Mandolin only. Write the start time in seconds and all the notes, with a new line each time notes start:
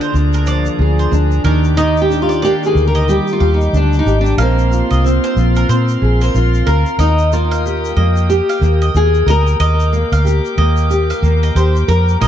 0.01 C5
0.34 A#4
0.47 D5
0.99 C5
1.45 A#4
1.77 D#5
2.29 D5
2.42 D5
2.95 D#5
3.40 F5
4.38 F5
4.91 D#5
5.24 C5
5.56 A#4
5.69 C5
6.21 C5
6.67 A#4
6.99 D#5
7.51 F5
7.97 D#5
8.49 F5
8.82 D#5
9.28 D#5
9.60 D#5
10.12 F5
10.58 D#5
11.10 F5
11.43 D#5
11.56 C5
11.89 A#4
12.21 D#5